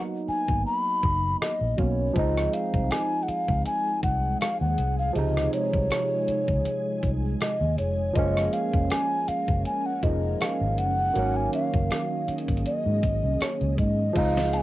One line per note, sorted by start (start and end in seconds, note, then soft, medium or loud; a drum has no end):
0.00 1.73 F#3 medium
0.00 1.74 A#3 medium
0.00 1.75 B3 medium
0.00 1.76 D#4 medium
0.28 0.63 G#5 loud
0.28 muted fingered electric bass stroke soft
0.48 0.63 G#1 medium
0.48 kick medium
0.66 1.37 B5 loud
1.03 1.34 F#1 medium
1.03 kick medium
1.41 1.80 D#5 medium
1.41 cross-stick loud
1.61 1.75 A#1 medium
1.77 2.09 B1 medium
1.77 2.15 F#3 soft
1.77 2.16 A#3 soft
1.77 2.16 B3 soft
1.77 2.16 C#4 medium
1.77 2.16 C#5 medium
1.77 kick medium
2.13 2.47 C#2 loud
2.13 5.10 F3 medium
2.13 5.11 G#3 medium
2.13 8.12 G#3 medium
2.13 5.12 C4 medium
2.13 8.12 G#4 medium
2.13 2.55 D#5 medium
2.13 11.12 G#5 medium
2.13 kick loud
2.13 closed hi-hat medium
2.19 5.13 D#4 medium
2.37 cross-stick medium
2.53 2.93 F5 medium
2.53 closed hi-hat medium
2.74 2.88 C2 medium
2.74 kick medium
2.91 3.24 G#5 loud
2.91 cross-stick loud
2.91 closed hi-hat medium
3.23 3.30 F#5 medium
3.28 3.66 F5 medium
3.28 muted fingered electric bass stroke soft
3.28 closed hi-hat medium
3.48 3.63 C#2 medium
3.48 kick medium
3.66 4.01 G#5 loud
3.66 closed hi-hat medium
4.03 4.34 C2 medium
4.03 4.38 F#5 medium
4.03 kick medium
4.03 closed hi-hat medium
4.41 4.60 F5 medium
4.41 cross-stick loud
4.41 closed hi-hat medium
4.61 4.75 D#2 medium
4.61 4.96 F#5 medium
4.78 5.09 C2 medium
4.78 closed hi-hat medium
4.99 5.15 F5 medium
5.13 5.46 C#2 medium
5.13 8.12 C3 medium
5.13 8.10 F3 medium
5.13 8.11 G#3 medium
5.13 5.51 D#5 medium
5.13 closed hi-hat medium
5.18 8.13 D#4 medium
5.37 cross-stick medium
5.53 7.11 C#5 loud
5.53 closed hi-hat medium
5.74 5.88 C2 medium
5.74 kick medium
5.91 cross-stick loud
5.91 closed hi-hat medium
6.28 muted fingered electric bass stroke soft
6.28 closed hi-hat medium
6.48 6.62 C#2 medium
6.48 kick medium
6.65 closed hi-hat medium
7.03 7.34 C2 medium
7.03 kick medium
7.03 closed hi-hat medium
7.41 7.76 D#5 medium
7.41 cross-stick loud
7.41 closed hi-hat medium
7.61 7.75 D#2 loud
7.78 8.09 F1 medium
7.78 8.17 C#5 medium
7.78 closed hi-hat medium
8.13 8.46 F#1 medium
8.13 9.98 F3 medium
8.13 9.99 G#3 medium
8.13 10.00 A#3 medium
8.13 14.12 C#4 medium
8.13 11.13 A#4 medium
8.13 8.55 D#5 medium
8.13 kick loud
8.13 closed hi-hat medium
8.19 10.01 C#4 medium
8.37 cross-stick medium
8.53 8.92 F5 medium
8.53 closed hi-hat medium
8.74 8.88 F1 medium
8.74 kick medium
8.90 9.30 G#5 loud
8.90 cross-stick loud
8.90 closed hi-hat medium
9.28 9.65 F5 medium
9.28 muted fingered electric bass stroke soft
9.28 closed hi-hat medium
9.48 9.62 F#1 medium
9.48 kick medium
9.65 9.88 G#5 loud
9.65 closed hi-hat medium
9.86 10.05 F#5 medium
10.02 10.34 F1 medium
10.02 11.15 F3 soft
10.02 11.16 G#3 soft
10.02 11.16 A#3 soft
10.02 11.16 D#4 soft
10.02 10.43 D#5 medium
10.02 kick medium
10.02 closed hi-hat medium
10.41 10.46 F#5 medium
10.41 cross-stick loud
10.41 closed hi-hat medium
10.45 10.80 F5 medium
10.61 10.78 G#1 medium
10.78 11.09 F#1 medium
10.78 11.38 F#5 medium
10.78 closed hi-hat medium
11.13 11.47 G#1 medium
11.13 14.10 D#3 medium
11.13 14.11 F#3 medium
11.13 14.12 A#3 medium
11.13 14.13 G#4 medium
11.13 14.13 D#5 medium
11.13 closed hi-hat medium
11.19 14.13 C#4 medium
11.36 11.53 G#5 medium
11.53 12.36 F5 medium
11.53 closed hi-hat medium
11.74 11.88 F#1 medium
11.74 kick medium
11.91 cross-stick loud
11.91 closed hi-hat medium
12.28 muted fingered electric bass stroke soft
12.28 closed hi-hat medium
12.38 closed hi-hat medium
12.48 12.62 G#1 medium
12.48 kick medium
12.48 closed hi-hat medium
12.57 closed hi-hat medium
12.66 13.43 D#5 medium
12.66 closed hi-hat medium
12.86 13.00 G#2 medium
13.03 13.20 G#1 medium
13.03 kick medium
13.03 closed hi-hat medium
13.24 13.38 C2 medium
13.41 13.78 C#5 medium
13.41 cross-stick loud
13.41 closed hi-hat medium
13.61 13.75 C#2 medium
13.61 closed hi-hat soft
13.78 14.09 G#2 loud
13.78 14.18 D#5 medium
13.78 kick medium
13.78 closed hi-hat medium
14.13 14.63 C#2 medium
14.13 14.63 F3 medium
14.13 14.63 G#3 medium
14.13 14.63 C4 medium
14.13 14.63 G#4 medium
14.13 14.63 C5 medium
14.13 14.55 F5 medium
14.13 kick loud
14.13 closed hi-hat medium
14.13 crash medium
14.18 14.63 D#4 medium
14.37 snare medium
14.53 14.63 F5 medium
14.53 14.58 A5 medium
14.53 closed hi-hat medium
14.57 14.63 G#5 medium